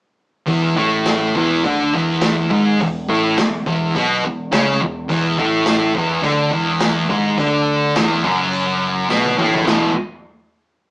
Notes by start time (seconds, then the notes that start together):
0.47 E1 E2 E3, kick, open hi-hat
0.76 A1 A2 A3, kick
1.06 snare, open hi-hat, tambourine
1.35 E1 E2 E3, kick
1.64 D2 D3 D4, kick, open hi-hat
1.93 E1 E2 E3
2.22 snare, open hi-hat, tambourine
2.50 G#1 G#2 G#3, kick
2.80 E1 E2, kick, open hi-hat
3.08 A1 A2 A3
3.38 E1 E2, snare, open hi-hat, tambourine
3.66 E1 E2 E3, kick
3.95 B1 B2 B3, kick, open hi-hat
4.23 E1 E2
4.52 C#2 C#3 C#4, snare, open hi-hat, tambourine
4.81 E1 E2
5.09 E1 E2 E3, kick, open hi-hat
5.38 A1 A2 A3, kick
5.66 snare, open hi-hat, tambourine
5.94 E1 E2 E3, kick
6.22 D2 D3 D4, kick, open hi-hat
6.51 E1 E2 E3
6.80 snare, open hi-hat, tambourine
7.09 G#1 G#2 G#3, kick
7.38 D2 D3 D4, kick, open hi-hat
7.95 E1 E2 E3, snare, open hi-hat, tambourine
8.24 F#1 F#2 F#3, kick
8.53 open hi-hat
9.09 B1 B2 B3, snare, tambourine
9.25 high tom
9.37 A1 A2 A3, mid tom
9.53 floor tom
9.65 E1 E2 B2 E3, snare, tambourine, crash